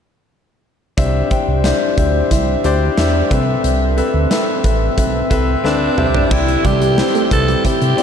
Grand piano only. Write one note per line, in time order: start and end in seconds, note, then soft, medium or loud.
0.97 1.94 C3 medium
0.97 1.20 D4 medium
0.97 1.20 G4 medium
0.97 1.20 C5 medium
0.97 1.21 E5 loud
1.30 1.53 D4 medium
1.30 1.53 G4 medium
1.30 1.54 C5 medium
1.30 1.54 G5 medium
1.64 1.86 D4 medium
1.64 1.87 G4 medium
1.64 1.87 C5 medium
1.64 1.87 E5 medium
1.97 2.20 D4 medium
1.97 2.20 G4 medium
1.97 2.20 C5 medium
1.97 2.21 E5 medium
2.31 2.54 D4 medium
2.31 2.54 G4 medium
2.31 2.54 C5 medium
2.31 2.54 E5 medium
2.64 2.87 D4 medium
2.64 2.87 G4 medium
2.64 2.87 C5 medium
2.64 2.87 D5 loud
2.97 3.20 D4 medium
2.97 3.20 G4 medium
2.97 3.20 C5 medium
2.97 3.21 E5 medium
3.30 4.27 C3 medium
3.30 3.84 C4 medium
3.30 3.84 A4 medium
3.30 3.84 B4 medium
3.30 3.85 E5 medium
3.97 4.20 C4 medium
3.97 4.20 A4 medium
3.97 4.20 B4 medium
3.97 4.20 E5 medium
4.30 4.53 C4 medium
4.30 4.53 A4 medium
4.30 4.54 B4 medium
4.30 4.54 E5 medium
4.64 4.86 C4 medium
4.64 4.87 A4 medium
4.64 4.87 B4 medium
4.64 4.87 E5 medium
4.97 5.20 C4 medium
4.97 5.20 A4 medium
4.97 5.20 B4 medium
4.97 5.20 E5 medium
5.30 5.53 C4 loud
5.30 5.53 A4 medium
5.30 5.53 B4 medium
5.30 5.54 E5 loud
5.64 5.86 C4 loud
5.64 5.87 A4 medium
5.64 5.87 B4 medium
5.64 5.87 E5 loud
5.97 6.24 D4 medium
5.97 6.24 G4 medium
5.97 6.24 C5 medium
5.97 6.25 E5 medium
6.30 7.27 C3 medium
6.30 6.53 C4 medium
6.30 6.53 E4 medium
6.30 6.53 G4 medium
6.30 6.54 D5 medium
6.63 6.86 C4 medium
6.63 6.87 E4 medium
6.63 6.87 G4 medium
6.63 6.87 D5 medium
6.97 7.20 C4 medium
6.97 7.20 E4 medium
6.97 7.20 G4 medium
6.97 7.20 C5 medium
7.30 7.53 C4 medium
7.30 7.53 E4 medium
7.30 7.53 G4 medium
7.30 7.54 B4 medium
7.64 7.86 C4 medium
7.64 7.87 E4 medium
7.64 7.87 G4 medium
7.64 7.87 E5 medium
7.97 8.03 C4 medium
7.97 8.03 E4 medium
7.97 8.03 G4 medium
7.97 8.03 D5 loud